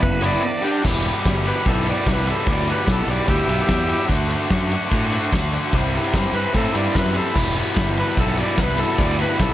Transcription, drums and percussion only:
0.01 kick, ride, tambourine
0.24 ride
0.83 kick, crash, tambourine
1.04 ride, tambourine
1.25 kick, snare, ride, tambourine
1.45 ride, tambourine
1.66 kick, ride
1.86 ride, tambourine
2.04 kick, snare, ride, tambourine
2.25 ride, tambourine
2.45 kick, ride, tambourine
2.65 ride, tambourine
2.86 kick, snare, ride, tambourine
3.08 ride, tambourine
3.28 kick, ride
3.49 ride, tambourine
3.68 kick, snare, ride, tambourine
3.89 ride, tambourine
4.09 kick, ride, tambourine
4.29 ride, tambourine
4.49 kick, snare, ride, tambourine
4.71 ride, tambourine
4.92 kick, ride
5.13 ride
5.31 kick, snare, ride, tambourine
5.42 tambourine
5.52 ride, tambourine
5.73 kick, ride, tambourine
5.83 tambourine
5.93 ride, tambourine
6.03 tambourine
6.13 kick, snare, ride, tambourine
6.34 ride, tambourine
6.45 tambourine
6.54 kick, ride, tambourine
6.67 tambourine
6.75 ride, tambourine
6.84 tambourine
6.95 kick, snare, ride, tambourine
7.14 ride, tambourine
7.25 tambourine
7.35 kick, crash, tambourine
7.55 ride, tambourine
7.76 kick, snare, ride, tambourine
7.97 ride, tambourine
8.17 kick, ride
8.37 ride, tambourine
8.57 kick, snare, ride, tambourine
8.78 ride
8.97 kick, ride, tambourine
9.19 ride, tambourine
9.39 kick, snare, ride, tambourine

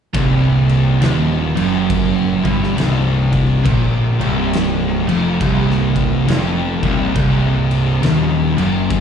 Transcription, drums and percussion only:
0.15 kick, crash
0.69 crash
1.02 snare, crash
1.57 crash
1.90 kick, crash
2.45 kick, crash
2.63 snare
2.78 snare, crash
3.33 kick, crash
3.66 kick, crash
4.21 crash
4.53 snare, crash
5.09 crash
5.41 kick, crash
5.71 snare
5.96 kick, crash
6.28 snare, crash
6.83 kick, crash
7.16 kick, crash
7.71 crash
8.03 snare, crash
8.58 crash
8.90 kick, crash

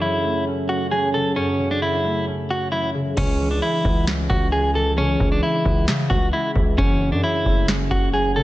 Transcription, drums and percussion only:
3.17 kick, crash
3.85 kick
4.07 snare
4.30 kick
5.20 kick
5.65 kick
5.88 snare
6.10 kick
6.56 kick
6.78 kick
7.46 kick
7.68 snare
7.91 kick

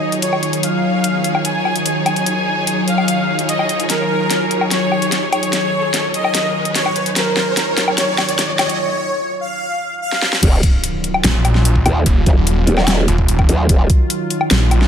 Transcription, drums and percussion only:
0.12 closed hi-hat
0.22 closed hi-hat
0.33 low woodblock
0.43 closed hi-hat
0.53 closed hi-hat
0.63 closed hi-hat
1.04 closed hi-hat
1.24 closed hi-hat
1.35 low woodblock
1.45 closed hi-hat
1.65 low woodblock
1.76 closed hi-hat
1.86 closed hi-hat
2.06 closed hi-hat, low woodblock
2.16 closed hi-hat
2.26 closed hi-hat
2.67 closed hi-hat
2.88 closed hi-hat
2.98 low woodblock
3.08 closed hi-hat
3.39 closed hi-hat
3.49 closed hi-hat
3.59 low woodblock
3.69 closed hi-hat
3.80 closed hi-hat
3.90 snare, closed hi-hat
4.30 snare, closed hi-hat
4.51 closed hi-hat
4.61 low woodblock
4.71 snare, closed hi-hat
4.92 low woodblock
5.02 closed hi-hat
5.12 snare, closed hi-hat
5.33 closed hi-hat, low woodblock
5.43 closed hi-hat
5.53 snare, closed hi-hat
5.94 snare, closed hi-hat
6.14 closed hi-hat
6.25 low woodblock
6.35 snare, closed hi-hat
6.65 closed hi-hat
6.75 snare, closed hi-hat
6.86 low woodblock
6.96 closed hi-hat
7.06 closed hi-hat
7.16 snare, closed hi-hat
7.37 snare
7.57 snare, closed hi-hat
7.77 snare, closed hi-hat
7.88 low woodblock
7.98 snare, closed hi-hat
8.18 snare, low woodblock
8.29 closed hi-hat
8.39 snare, closed hi-hat
8.59 snare, closed hi-hat, low woodblock
8.69 closed hi-hat
10.12 snare
10.22 snare
10.33 snare
10.43 kick, closed hi-hat, crash
10.63 kick, closed hi-hat
10.84 closed hi-hat
11.04 closed hi-hat
11.14 low woodblock
11.24 snare, closed hi-hat
11.45 closed hi-hat, low woodblock
11.55 snare
11.65 closed hi-hat
11.76 kick
11.86 closed hi-hat, low woodblock
12.06 kick, closed hi-hat
12.26 kick, closed hi-hat
12.47 closed hi-hat
12.67 closed hi-hat
12.78 snare, low woodblock
12.88 snare, closed hi-hat
13.08 closed hi-hat
13.18 kick
13.28 closed hi-hat
13.39 kick, low woodblock
13.49 closed hi-hat
13.69 kick, closed hi-hat
13.90 kick, closed hi-hat
14.10 closed hi-hat
14.30 closed hi-hat
14.41 low woodblock
14.51 snare, closed hi-hat
14.71 closed hi-hat, low woodblock
14.82 snare

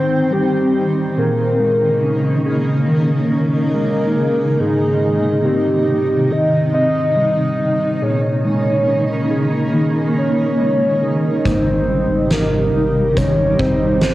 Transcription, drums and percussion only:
11.45 kick, closed hi-hat
12.31 snare, closed hi-hat
13.17 kick, closed hi-hat
13.59 kick
14.02 snare, closed hi-hat

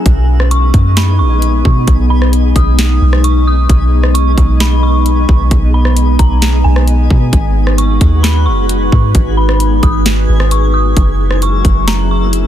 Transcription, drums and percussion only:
0.06 kick, closed hi-hat
0.40 cross-stick
0.51 closed hi-hat
0.74 kick, closed hi-hat
0.97 snare, closed hi-hat
1.42 closed hi-hat
1.65 kick
1.88 kick, closed hi-hat
2.22 cross-stick
2.33 closed hi-hat
2.56 kick, closed hi-hat
2.79 snare, closed hi-hat
3.13 cross-stick
3.24 closed hi-hat
3.69 kick, closed hi-hat
4.04 cross-stick
4.15 closed hi-hat
4.38 kick, closed hi-hat
4.60 snare, closed hi-hat
5.06 closed hi-hat
5.29 kick
5.51 kick, closed hi-hat
5.85 cross-stick
5.97 closed hi-hat
6.19 kick, closed hi-hat
6.42 snare, closed hi-hat
6.76 cross-stick
6.88 closed hi-hat
7.11 kick
7.33 kick, closed hi-hat
7.67 cross-stick
7.78 closed hi-hat
8.01 kick, closed hi-hat
8.24 snare, closed hi-hat
8.69 closed hi-hat
8.92 kick
9.15 kick, closed hi-hat
9.49 cross-stick
9.60 closed hi-hat
9.83 kick, closed hi-hat
10.06 snare, closed hi-hat
10.40 cross-stick
10.51 closed hi-hat
10.97 kick, closed hi-hat
11.31 cross-stick
11.42 closed hi-hat
11.65 kick, closed hi-hat
11.88 snare, closed hi-hat
12.33 closed hi-hat

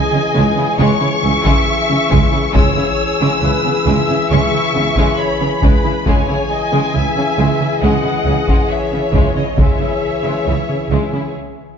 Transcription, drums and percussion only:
1.45 taiko
2.12 taiko
2.55 taiko
4.96 taiko
5.62 taiko
6.06 taiko
8.48 taiko
9.14 taiko
9.58 taiko

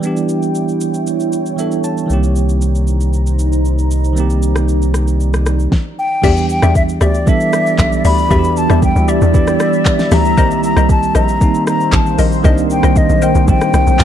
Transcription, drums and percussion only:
0.03 shaker
0.17 shaker
0.29 shaker
0.42 shaker
0.55 shaker
0.68 shaker
0.81 shaker
0.94 shaker
1.07 shaker
1.20 shaker
1.33 shaker
1.46 shaker
1.58 shaker
1.72 shaker
1.84 shaker
1.97 shaker
2.10 shaker
2.23 shaker
2.36 shaker
2.49 shaker
2.61 shaker
2.75 shaker
2.87 shaker
3.01 shaker
3.13 shaker
3.27 shaker
3.39 shaker
3.53 shaker
3.65 shaker
3.79 shaker
3.91 shaker
4.04 shaker
4.17 shaker
4.30 shaker
4.43 shaker
4.56 cross-stick, shaker
4.68 shaker
4.82 shaker
4.94 cross-stick, shaker
5.08 shaker
5.20 shaker
5.34 cross-stick, shaker
5.46 cross-stick, shaker
5.59 shaker
5.72 kick, snare
6.24 kick, crash, shaker
6.37 shaker
6.49 shaker
6.62 cross-stick, shaker
6.75 kick, shaker
6.89 shaker
7.01 cross-stick, shaker
7.14 shaker
7.27 kick, shaker
7.40 shaker
7.53 cross-stick, shaker
7.66 shaker
7.78 kick, clap, shaker
7.92 shaker
8.05 open hi-hat, shaker
8.18 shaker
8.31 kick, shaker
8.44 shaker
8.57 shaker
8.70 cross-stick, shaker
8.82 kick, shaker
8.96 shaker
9.08 shaker
9.22 shaker
9.34 kick, shaker
9.47 cross-stick, shaker
9.60 cross-stick, shaker
9.73 shaker
9.85 kick, clap, shaker
9.99 snare, shaker
10.11 cross-stick, snare, open hi-hat, shaker
10.25 shaker
10.38 kick, shaker
10.51 shaker
10.63 shaker
10.77 cross-stick, shaker
10.89 kick, shaker
11.03 shaker
11.15 cross-stick, shaker
11.28 shaker
11.41 kick, shaker
11.54 shaker
11.67 cross-stick, shaker
11.80 shaker
11.92 kick, clap, shaker
12.06 shaker
12.19 open hi-hat, shaker
12.32 shaker
12.44 kick, shaker
12.58 shaker
12.70 shaker
12.83 cross-stick, shaker
12.96 kick, shaker
13.10 shaker
13.22 shaker
13.35 shaker
13.48 kick, shaker
13.61 cross-stick, shaker
13.74 cross-stick, shaker
13.87 shaker
13.99 kick, clap, shaker

